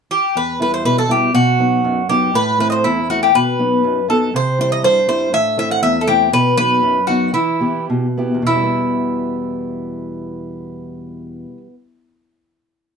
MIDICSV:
0, 0, Header, 1, 3, 480
1, 0, Start_track
1, 0, Key_signature, 1, "minor"
1, 0, Tempo, 498339
1, 344, Time_signature, 2, 2, 24, 8
1, 7065, Tempo, 568182
1, 8025, Tempo, 612245
1, 11546, End_track
2, 0, Start_track
2, 0, Title_t, "Bouzouki"
2, 0, Program_c, 0, 25
2, 106, Note_on_c, 0, 67, 70
2, 352, Note_off_c, 0, 67, 0
2, 356, Note_on_c, 0, 71, 74
2, 586, Note_off_c, 0, 71, 0
2, 597, Note_on_c, 0, 71, 69
2, 702, Note_off_c, 0, 71, 0
2, 711, Note_on_c, 0, 72, 61
2, 818, Note_off_c, 0, 72, 0
2, 823, Note_on_c, 0, 71, 79
2, 944, Note_off_c, 0, 71, 0
2, 948, Note_on_c, 0, 69, 75
2, 1068, Note_off_c, 0, 69, 0
2, 1070, Note_on_c, 0, 67, 75
2, 1292, Note_off_c, 0, 67, 0
2, 1296, Note_on_c, 0, 66, 82
2, 2013, Note_off_c, 0, 66, 0
2, 2017, Note_on_c, 0, 67, 72
2, 2265, Note_off_c, 0, 67, 0
2, 2267, Note_on_c, 0, 71, 88
2, 2496, Note_off_c, 0, 71, 0
2, 2508, Note_on_c, 0, 71, 72
2, 2587, Note_off_c, 0, 71, 0
2, 2599, Note_on_c, 0, 75, 51
2, 2619, Note_on_c, 0, 72, 66
2, 2623, Note_off_c, 0, 75, 0
2, 2730, Note_off_c, 0, 72, 0
2, 2737, Note_on_c, 0, 64, 75
2, 2981, Note_off_c, 0, 64, 0
2, 2985, Note_on_c, 0, 66, 72
2, 3104, Note_off_c, 0, 66, 0
2, 3109, Note_on_c, 0, 67, 68
2, 3226, Note_off_c, 0, 67, 0
2, 3228, Note_on_c, 0, 71, 84
2, 3902, Note_off_c, 0, 71, 0
2, 3948, Note_on_c, 0, 69, 68
2, 4164, Note_off_c, 0, 69, 0
2, 4200, Note_on_c, 0, 72, 87
2, 4410, Note_off_c, 0, 72, 0
2, 4439, Note_on_c, 0, 72, 79
2, 4542, Note_off_c, 0, 72, 0
2, 4546, Note_on_c, 0, 75, 75
2, 4651, Note_off_c, 0, 75, 0
2, 4666, Note_on_c, 0, 72, 88
2, 4882, Note_off_c, 0, 72, 0
2, 4900, Note_on_c, 0, 72, 75
2, 5137, Note_off_c, 0, 72, 0
2, 5141, Note_on_c, 0, 76, 98
2, 5359, Note_off_c, 0, 76, 0
2, 5384, Note_on_c, 0, 76, 83
2, 5489, Note_off_c, 0, 76, 0
2, 5503, Note_on_c, 0, 78, 80
2, 5609, Note_off_c, 0, 78, 0
2, 5613, Note_on_c, 0, 76, 88
2, 5791, Note_on_c, 0, 69, 61
2, 5795, Note_off_c, 0, 76, 0
2, 5849, Note_off_c, 0, 69, 0
2, 5851, Note_on_c, 0, 67, 80
2, 6071, Note_off_c, 0, 67, 0
2, 6102, Note_on_c, 0, 71, 94
2, 6317, Note_off_c, 0, 71, 0
2, 6333, Note_on_c, 0, 71, 89
2, 6784, Note_off_c, 0, 71, 0
2, 6809, Note_on_c, 0, 66, 74
2, 7064, Note_off_c, 0, 66, 0
2, 7068, Note_on_c, 0, 64, 71
2, 7496, Note_off_c, 0, 64, 0
2, 8020, Note_on_c, 0, 64, 74
2, 10455, Note_off_c, 0, 64, 0
2, 11546, End_track
3, 0, Start_track
3, 0, Title_t, "Steel-string acoustic guitar"
3, 0, Program_c, 1, 25
3, 341, Note_on_c, 1, 40, 51
3, 574, Note_on_c, 1, 55, 41
3, 578, Note_on_c, 1, 59, 34
3, 583, Note_on_c, 1, 64, 48
3, 807, Note_off_c, 1, 40, 0
3, 813, Note_on_c, 1, 47, 60
3, 961, Note_off_c, 1, 55, 0
3, 962, Note_off_c, 1, 59, 0
3, 966, Note_off_c, 1, 64, 0
3, 1043, Note_on_c, 1, 55, 44
3, 1050, Note_on_c, 1, 59, 42
3, 1057, Note_on_c, 1, 64, 45
3, 1242, Note_off_c, 1, 55, 0
3, 1244, Note_off_c, 1, 59, 0
3, 1251, Note_off_c, 1, 64, 0
3, 1278, Note_off_c, 1, 47, 0
3, 1290, Note_on_c, 1, 47, 61
3, 1536, Note_on_c, 1, 54, 42
3, 1541, Note_on_c, 1, 59, 38
3, 1547, Note_on_c, 1, 63, 45
3, 1760, Note_off_c, 1, 47, 0
3, 1777, Note_on_c, 1, 42, 60
3, 1921, Note_off_c, 1, 54, 0
3, 1924, Note_off_c, 1, 59, 0
3, 1928, Note_off_c, 1, 63, 0
3, 2011, Note_on_c, 1, 54, 41
3, 2018, Note_on_c, 1, 59, 38
3, 2024, Note_on_c, 1, 63, 52
3, 2206, Note_off_c, 1, 54, 0
3, 2211, Note_off_c, 1, 59, 0
3, 2212, Note_off_c, 1, 63, 0
3, 2243, Note_off_c, 1, 42, 0
3, 2252, Note_on_c, 1, 45, 61
3, 2488, Note_on_c, 1, 57, 38
3, 2492, Note_on_c, 1, 60, 41
3, 2499, Note_on_c, 1, 64, 46
3, 2720, Note_off_c, 1, 45, 0
3, 2736, Note_on_c, 1, 40, 60
3, 2875, Note_off_c, 1, 57, 0
3, 2878, Note_off_c, 1, 60, 0
3, 2880, Note_off_c, 1, 64, 0
3, 2983, Note_on_c, 1, 57, 41
3, 2984, Note_on_c, 1, 60, 38
3, 2995, Note_on_c, 1, 64, 52
3, 3171, Note_off_c, 1, 60, 0
3, 3172, Note_off_c, 1, 57, 0
3, 3180, Note_off_c, 1, 64, 0
3, 3201, Note_off_c, 1, 40, 0
3, 3226, Note_on_c, 1, 47, 56
3, 3460, Note_on_c, 1, 59, 39
3, 3464, Note_on_c, 1, 54, 38
3, 3469, Note_on_c, 1, 63, 44
3, 3686, Note_off_c, 1, 47, 0
3, 3700, Note_on_c, 1, 42, 61
3, 3841, Note_off_c, 1, 59, 0
3, 3844, Note_off_c, 1, 54, 0
3, 3847, Note_off_c, 1, 63, 0
3, 3932, Note_on_c, 1, 54, 42
3, 3937, Note_on_c, 1, 59, 37
3, 3944, Note_on_c, 1, 63, 48
3, 4125, Note_off_c, 1, 54, 0
3, 4127, Note_off_c, 1, 59, 0
3, 4131, Note_off_c, 1, 63, 0
3, 4162, Note_off_c, 1, 42, 0
3, 4180, Note_on_c, 1, 48, 50
3, 4418, Note_on_c, 1, 55, 40
3, 4430, Note_on_c, 1, 60, 38
3, 4435, Note_on_c, 1, 64, 46
3, 4641, Note_off_c, 1, 48, 0
3, 4655, Note_on_c, 1, 43, 58
3, 4799, Note_off_c, 1, 55, 0
3, 4806, Note_off_c, 1, 60, 0
3, 4808, Note_off_c, 1, 64, 0
3, 4889, Note_on_c, 1, 55, 41
3, 4895, Note_on_c, 1, 60, 39
3, 4900, Note_on_c, 1, 64, 51
3, 5081, Note_off_c, 1, 55, 0
3, 5085, Note_off_c, 1, 60, 0
3, 5087, Note_off_c, 1, 64, 0
3, 5118, Note_off_c, 1, 43, 0
3, 5130, Note_on_c, 1, 45, 61
3, 5368, Note_on_c, 1, 57, 41
3, 5373, Note_on_c, 1, 60, 40
3, 5375, Note_on_c, 1, 64, 49
3, 5594, Note_off_c, 1, 45, 0
3, 5609, Note_on_c, 1, 40, 62
3, 5752, Note_off_c, 1, 57, 0
3, 5752, Note_off_c, 1, 60, 0
3, 5755, Note_off_c, 1, 64, 0
3, 5848, Note_on_c, 1, 57, 49
3, 5853, Note_on_c, 1, 60, 43
3, 5861, Note_on_c, 1, 64, 54
3, 6038, Note_off_c, 1, 57, 0
3, 6042, Note_off_c, 1, 60, 0
3, 6046, Note_off_c, 1, 64, 0
3, 6072, Note_off_c, 1, 40, 0
3, 6091, Note_on_c, 1, 47, 56
3, 6331, Note_on_c, 1, 54, 42
3, 6337, Note_on_c, 1, 59, 39
3, 6337, Note_on_c, 1, 63, 45
3, 6556, Note_off_c, 1, 47, 0
3, 6579, Note_on_c, 1, 42, 65
3, 6720, Note_off_c, 1, 54, 0
3, 6722, Note_off_c, 1, 63, 0
3, 6723, Note_off_c, 1, 59, 0
3, 6817, Note_on_c, 1, 54, 44
3, 6828, Note_on_c, 1, 59, 38
3, 6830, Note_on_c, 1, 63, 48
3, 7017, Note_off_c, 1, 54, 0
3, 7024, Note_off_c, 1, 59, 0
3, 7025, Note_off_c, 1, 63, 0
3, 7057, Note_off_c, 1, 42, 0
3, 7063, Note_on_c, 1, 52, 58
3, 7292, Note_on_c, 1, 59, 42
3, 7298, Note_on_c, 1, 64, 39
3, 7299, Note_on_c, 1, 67, 42
3, 7512, Note_off_c, 1, 52, 0
3, 7539, Note_on_c, 1, 47, 60
3, 7675, Note_off_c, 1, 59, 0
3, 7679, Note_off_c, 1, 64, 0
3, 7679, Note_off_c, 1, 67, 0
3, 7775, Note_on_c, 1, 59, 43
3, 7780, Note_on_c, 1, 64, 39
3, 7784, Note_on_c, 1, 67, 50
3, 7919, Note_on_c, 1, 40, 42
3, 7974, Note_off_c, 1, 47, 0
3, 7978, Note_off_c, 1, 59, 0
3, 7978, Note_off_c, 1, 64, 0
3, 7983, Note_off_c, 1, 67, 0
3, 7984, Note_on_c, 1, 47, 44
3, 8042, Note_on_c, 1, 52, 41
3, 8098, Note_on_c, 1, 55, 43
3, 8155, Note_on_c, 1, 59, 47
3, 10361, Note_off_c, 1, 40, 0
3, 10422, Note_off_c, 1, 47, 0
3, 10477, Note_off_c, 1, 52, 0
3, 10533, Note_off_c, 1, 55, 0
3, 10590, Note_off_c, 1, 59, 0
3, 11546, End_track
0, 0, End_of_file